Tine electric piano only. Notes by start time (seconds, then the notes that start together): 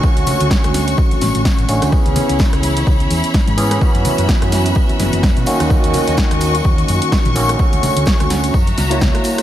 0.04 C#4 F#4
1.69 D3 A3 C#4 F#4
1.91 E3 B3 C#4 G#4
3.57 E3 B3 C#4 G#4
3.80 E3 B3 C#4 F#4
5.46 D#3 A#3 C#4 F#4
5.69 D#3 A#3 C#4 F#4
7.35 D#3 A#3 C#4 F#4
7.59 D3 A3 C#4 F#4
8.90 A#3 E4 F#4 C#5